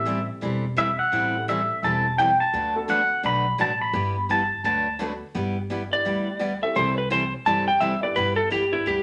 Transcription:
Already playing: A1 A3 C4 E4 G4 A4 E5
0.05 E3 G3 C4 E4 A4
0.41 E1 E3 G3 C4 E4 A4
0.76 E3 G3 C4 E4 A4 E5
0.99 F#5
1.12 A1 E3 G3 C4 E4 A4
1.34 A3 C4 E4 G4 A4
1.48 E3 G3 C4 E4 A4 E5
1.83 E1 E3 G3 C4 E4 A4 A5
2.18 E3 G3 C4 E4 A4 G5
2.40 A5
2.53 D2 D3 F#3 A3 D4 F#4 B4
2.74 A3 B3 D4 F#4 A4
2.88 D3 F#3 A3 D4 F#4 B4 F#5
3.23 B1 D3 F#3 A3 D4 F#4 B4 B5
3.58 A1 D3 F#3 A3 D4 F#4 B4 A5
3.82 B5
3.93 G1 G3 B3 E4 G4
4.29 G3 B3 E4 G4 A5
4.64 D2 D3 F#3 A3 D4 F#4 B4 A5
4.99 D3 F#3 A3 B3 D4 F#4 A4 B4
5.35 G1 G3 B3 E4 G4
5.70 G3 B3 E4 G4
5.90 B3 D4 E4 G4 B4 D5
6.05 D2 G3 B3 E4 G4
6.39 G3 B3 E4 G4
6.62 A3 C4 E4 G4 A4 E5
6.75 C2 C3 E3 G3 C4 E4 A4 C5
6.98 B4
7.10 C3 E3 G3 C4 E4 A4 C5
7.46 G1 C3 E3 G3 C4 E4 A4 A5
7.68 G5
7.80 C3 E3 G3 C4 E4 A4 E5
8.02 B3 D4 E4 G4 B4 D5
8.15 G1 G3 B3 E4 G4 B4
8.36 A4
8.50 G3 B3 E4 G4
8.72 B3 D4 E4 G4 B4
8.86 D2 G3 B3 E4 G4

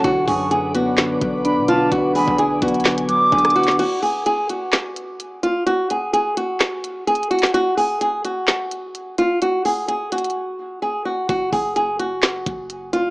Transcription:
Already playing: F#5
0.04 B1 D3 F#4 B4 D5 D6, kick, closed hi-hat
0.28 F#2 F#3 G#4 C#6, kick, open hi-hat
0.51 D3 G#4, closed hi-hat
0.75 B3 F#4, closed hi-hat
0.97 D3, snare, clap, closed hi-hat
1.21 B1 F#3, kick, closed hi-hat
1.45 D4 B5, closed hi-hat
1.57 B2
1.68 D3 F4 A5, closed hi-hat
1.92 B1 D3 F#4 G#5, kick, closed hi-hat
2.15 A1 F#3 G#4 B5, open hi-hat
2.28 B1, kick
2.38 D3 G#4, closed hi-hat
2.62 B1 B3 F#4, kick, closed hi-hat
2.68 closed hi-hat
2.74 closed hi-hat
2.80 closed hi-hat
2.85 D3, snare, clap, closed hi-hat
2.98 closed hi-hat
3.09 F#3 D6, closed hi-hat
3.32 B1 D4 G#4, kick, closed hi-hat
3.38 closed hi-hat
3.45 cross-stick, closed hi-hat
3.50 closed hi-hat
3.56 D3 F#4, closed hi-hat
3.63 closed hi-hat
3.67 snare, clap, closed hi-hat
3.79 F#4, closed hi-hat, crash
4.03 G#4, open hi-hat
4.26 G#4, closed hi-hat
4.49 F#4, closed hi-hat
4.72 snare, clap, closed hi-hat
4.96 closed hi-hat
5.20 closed hi-hat
5.43 F4, closed hi-hat
5.66 F#4, closed hi-hat
5.90 G#4, closed hi-hat
6.13 G#4, closed hi-hat
6.37 F#4, closed hi-hat
6.60 snare, clap, closed hi-hat
6.84 closed hi-hat
7.07 G#4, closed hi-hat
7.15 closed hi-hat
7.23 closed hi-hat
7.31 F#4, closed hi-hat
7.39 closed hi-hat
7.43 snare, clap, closed hi-hat
7.54 F#4, closed hi-hat
7.77 G#4, open hi-hat
8.01 G#4, closed hi-hat
8.25 F#4, closed hi-hat
8.47 snare, clap, closed hi-hat
8.71 closed hi-hat
8.95 closed hi-hat
9.18 F4, closed hi-hat
9.42 F#4, closed hi-hat
9.65 G#4, open hi-hat
9.88 G#4, closed hi-hat
10.12 F#4, closed hi-hat
10.18 closed hi-hat
10.24 closed hi-hat
10.30 closed hi-hat
10.82 G#4
11.05 F#4
11.29 F#1 F#4, kick, closed hi-hat
11.52 F#1 G#4, kick, open hi-hat
11.76 G#4, closed hi-hat
11.99 F#4, closed hi-hat
12.22 snare, clap, closed hi-hat
12.46 F#1, kick, closed hi-hat
12.70 closed hi-hat
12.93 F4, closed hi-hat

